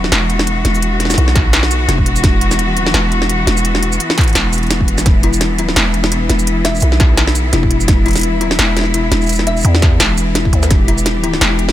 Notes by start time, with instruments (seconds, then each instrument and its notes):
Already playing: 808-style bass D#1, cello section E3 B3 F#4, synth drone E4
0.04 snare
0.12 808-style bass E1, snare, closed hi-hat
0.30 closed hi-hat
0.39 snare
0.47 closed hi-hat
0.65 808-style bass E1, snare, closed hi-hat
0.75 shaker
0.82 closed hi-hat
1.00 snare, closed hi-hat
1.05 snare
1.10 snare, shaker
1.14 808-style bass B1, snare, closed hi-hat
1.28 snare
1.35 kick, snare, closed hi-hat
1.53 snare, closed hi-hat
1.63 snare
1.71 closed hi-hat, shaker
1.88 808-style bass E1, snare, closed hi-hat
1.98 kick
2.06 closed hi-hat
2.16 shaker
2.24 808-style bass E1, kick, snare, closed hi-hat
2.41 closed hi-hat
2.51 snare, shaker
2.59 closed hi-hat
2.73 808-style bass D#1, closed hi-hat
2.86 snare
2.94 808-style bass E1, snare, closed hi-hat
3.12 closed hi-hat
3.22 snare
3.29 closed hi-hat
3.47 808-style bass E1, snare, closed hi-hat
3.57 shaker
3.65 closed hi-hat
3.75 snare
3.83 closed hi-hat
3.92 shaker
4.00 closed hi-hat
4.10 snare
4.18 kick, snare, closed hi-hat
4.21 closed hi-hat
4.23 closed hi-hat
4.28 closed hi-hat
4.29 closed hi-hat
4.33 snare, closed hi-hat
4.35 808-style bass E1, closed hi-hat
4.53 closed hi-hat, shaker
4.58 closed hi-hat
4.63 closed hi-hat
4.67 snare, closed hi-hat
4.71 closed hi-hat, shaker
4.81 kick
4.88 closed hi-hat
4.98 snare, shaker
5.06 808-style bass E1, cello section E4, synth drone E4, kick, snare, closed hi-hat
5.23 kalimba E4, closed hi-hat
5.33 shaker
5.41 snare, closed hi-hat
5.55 808-style bass D#1, closed hi-hat
5.59 kalimba E4
5.69 snare
5.76 808-style bass E1, snare, closed hi-hat
5.94 closed hi-hat
6.04 snare
6.12 kalimba E4, closed hi-hat
6.29 808-style bass E1, snare, closed hi-hat
6.39 shaker
6.47 closed hi-hat
6.65 kalimba E5, snare, closed hi-hat
6.75 shaker
6.77 shaker
6.80 808-style bass B1, closed hi-hat, shaker
6.92 snare
7.00 kalimba G4, kick, snare, closed hi-hat
7.17 snare, closed hi-hat
7.27 snare
7.35 closed hi-hat, shaker
7.53 808-style bass E1, kalimba E4, snare, closed hi-hat
7.63 kick
7.71 closed hi-hat
7.80 shaker
7.88 808-style bass E1, kick, snare, closed hi-hat
8.06 kalimba E4, closed hi-hat
8.08 closed hi-hat
8.11 closed hi-hat
8.13 snare, closed hi-hat
8.16 closed hi-hat, shaker
8.17 closed hi-hat
8.19 closed hi-hat
8.21 closed hi-hat
8.23 closed hi-hat
8.37 808-style bass D#1, kalimba E4, closed hi-hat
8.51 snare
8.59 808-style bass E1, snare, closed hi-hat
8.77 snare, closed hi-hat
8.79 snare
8.81 snare
8.84 snare
8.94 kalimba E4, closed hi-hat
9.12 808-style bass E1, snare, closed hi-hat
9.22 shaker
9.23 shaker
9.27 closed hi-hat, shaker
9.29 shaker
9.33 shaker
9.35 snare, shaker
9.47 kalimba E5, closed hi-hat
9.57 shaker
9.59 shaker
9.61 shaker
9.63 808-style bass E2, closed hi-hat, shaker
9.75 snare
9.82 kalimba G4, kick, snare, closed hi-hat
10.00 808-style bass E1, snare, closed hi-hat
10.18 closed hi-hat, shaker
10.35 kalimba E4, snare, closed hi-hat
10.45 kick
10.53 808-style bass D2, closed hi-hat
10.63 snare, shaker
10.71 808-style bass E1, cello section G4, kick, snare, closed hi-hat
10.88 kalimba E4, closed hi-hat
10.98 shaker
11.06 snare, closed hi-hat
11.24 kalimba E4, closed hi-hat
11.33 snare
11.41 808-style bass E1, snare, closed hi-hat
11.59 closed hi-hat
11.69 snare